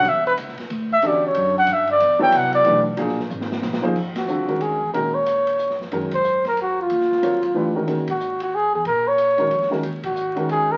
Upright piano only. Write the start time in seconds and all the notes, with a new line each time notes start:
1.02 D3 C#4 F#4 G4 A4
2.19 F#3 B3 E4 A4 C#5
2.65 E3 A3 D4 G4 B4
2.97 F#3 A#3 D4 F4 G#4
3.82 F3 A#3 D#4 G#4 C5
4.28 D3 G3 C4 F4 A4
4.47 D#3 G#3 C#4 F#4 A#4
4.93 D#3 G#3 C#4 F#4 A#4
5.92 D#3 G#3 C#4 F#4 A#4
7.22 F#3 C4 F4 A#4 C#5
7.54 E3 A3 D4 G4 B4
7.74 D#3 G#3 C#4 F#4 A#4
7.86 D#3 G#3 C#4 F#4 A#4
9.38 D#3 G#3 C#4 F#4 A#4
9.70 D#3 G#3 C#4 F#4 A#4
10.36 D#3 G#3 C#4 F#4 A#4